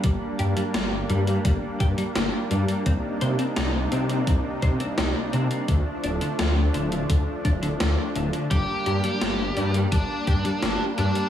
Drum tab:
HH |x-xxx-xxx-xxx-xx|x-xxx-xxx-xxx-xx|x-xxx-xxx-xxx-xx|x-xxx-xxx-xxx-xx|
SD |----o-------o---|----o-------o---|----o-------o---|----o-------o---|
BD |o-------o-o-----|o-------o-o-----|o-------o-o-----|o-------o-o-----|